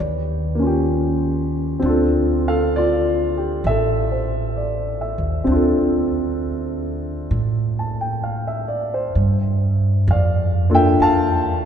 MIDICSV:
0, 0, Header, 1, 3, 480
1, 0, Start_track
1, 0, Key_signature, -1, "minor"
1, 0, Tempo, 916031
1, 954, Time_signature, 4, 2, 24, 8
1, 6105, End_track
2, 0, Start_track
2, 0, Title_t, "Upright piano"
2, 0, Program_c, 0, 0
2, 0, Control_c, 0, 64, 127
2, 0, Note_on_c, 0, 74, 41
2, 3, Control_c, 0, 64, 0
2, 82, Note_off_c, 0, 74, 0
2, 84, Control_c, 0, 64, 127
2, 289, Note_on_c, 0, 58, 45
2, 310, Note_on_c, 0, 61, 40
2, 325, Note_on_c, 0, 65, 35
2, 348, Note_on_c, 0, 67, 50
2, 937, Note_off_c, 0, 58, 0
2, 941, Note_on_c, 0, 60, 48
2, 948, Note_off_c, 0, 61, 0
2, 954, Note_on_c, 0, 62, 47
2, 955, Note_off_c, 0, 65, 0
2, 962, Control_c, 0, 64, 0
2, 967, Note_off_c, 0, 67, 0
2, 972, Note_on_c, 0, 65, 49
2, 991, Note_on_c, 0, 69, 53
2, 1058, Control_c, 0, 64, 127
2, 1295, Note_off_c, 0, 69, 0
2, 1300, Note_on_c, 0, 77, 70
2, 1303, Note_on_c, 0, 69, 62
2, 1432, Note_off_c, 0, 77, 0
2, 1434, Note_off_c, 0, 69, 0
2, 1447, Note_on_c, 0, 74, 76
2, 1448, Note_off_c, 0, 65, 0
2, 1456, Note_on_c, 0, 65, 55
2, 1768, Note_on_c, 0, 67, 39
2, 1903, Note_off_c, 0, 65, 0
2, 1921, Note_on_c, 0, 76, 73
2, 1933, Note_off_c, 0, 74, 0
2, 1933, Note_on_c, 0, 69, 58
2, 2158, Note_on_c, 0, 72, 35
2, 2393, Note_on_c, 0, 74, 38
2, 2493, Note_off_c, 0, 72, 0
2, 2618, Note_off_c, 0, 76, 0
2, 2626, Note_on_c, 0, 76, 43
2, 2774, Note_off_c, 0, 74, 0
2, 2844, Note_off_c, 0, 60, 0
2, 2852, Note_on_c, 0, 60, 47
2, 2859, Note_off_c, 0, 62, 0
2, 2867, Note_on_c, 0, 62, 45
2, 2878, Note_off_c, 0, 67, 0
2, 2891, Note_on_c, 0, 65, 46
2, 2903, Note_off_c, 0, 69, 0
2, 2911, Note_on_c, 0, 69, 53
2, 2967, Note_off_c, 0, 76, 0
2, 4083, Note_on_c, 0, 81, 33
2, 4197, Note_on_c, 0, 79, 40
2, 4225, Note_off_c, 0, 81, 0
2, 4316, Note_on_c, 0, 77, 42
2, 4363, Note_off_c, 0, 79, 0
2, 4441, Note_on_c, 0, 76, 41
2, 4544, Note_off_c, 0, 77, 0
2, 4549, Note_on_c, 0, 74, 45
2, 4646, Note_off_c, 0, 76, 0
2, 4684, Note_on_c, 0, 72, 45
2, 4699, Note_off_c, 0, 74, 0
2, 4786, Note_off_c, 0, 60, 0
2, 4793, Note_off_c, 0, 62, 0
2, 4801, Control_c, 0, 64, 0
2, 4805, Note_off_c, 0, 65, 0
2, 4815, Note_off_c, 0, 69, 0
2, 4848, Note_off_c, 0, 72, 0
2, 4908, Control_c, 0, 64, 127
2, 5296, Note_on_c, 0, 77, 63
2, 5302, Note_on_c, 0, 74, 49
2, 5592, Note_off_c, 0, 77, 0
2, 5595, Note_off_c, 0, 74, 0
2, 5605, Note_on_c, 0, 62, 46
2, 5606, Note_on_c, 0, 58, 52
2, 5610, Note_on_c, 0, 65, 51
2, 5614, Note_on_c, 0, 69, 56
2, 5631, Note_on_c, 0, 79, 75
2, 5634, Note_on_c, 0, 76, 63
2, 5741, Note_off_c, 0, 58, 0
2, 5741, Note_off_c, 0, 62, 0
2, 5743, Note_off_c, 0, 65, 0
2, 5745, Note_off_c, 0, 69, 0
2, 5761, Note_off_c, 0, 76, 0
2, 5773, Note_off_c, 0, 79, 0
2, 5774, Note_on_c, 0, 81, 90
2, 5781, Note_on_c, 0, 77, 69
2, 6105, Note_off_c, 0, 77, 0
2, 6105, Note_off_c, 0, 81, 0
2, 6105, End_track
3, 0, Start_track
3, 0, Title_t, "Upright bass"
3, 0, Program_c, 1, 32
3, 0, Note_on_c, 1, 39, 71
3, 934, Note_off_c, 1, 39, 0
3, 956, Note_on_c, 1, 38, 68
3, 1892, Note_off_c, 1, 38, 0
3, 1908, Note_on_c, 1, 33, 67
3, 2695, Note_off_c, 1, 33, 0
3, 2715, Note_on_c, 1, 39, 60
3, 2858, Note_off_c, 1, 39, 0
3, 2865, Note_on_c, 1, 38, 64
3, 3807, Note_off_c, 1, 38, 0
3, 3829, Note_on_c, 1, 45, 67
3, 4773, Note_off_c, 1, 45, 0
3, 4796, Note_on_c, 1, 43, 63
3, 5262, Note_off_c, 1, 43, 0
3, 5279, Note_on_c, 1, 41, 77
3, 5743, Note_off_c, 1, 41, 0
3, 5763, Note_on_c, 1, 40, 63
3, 6105, Note_off_c, 1, 40, 0
3, 6105, End_track
0, 0, End_of_file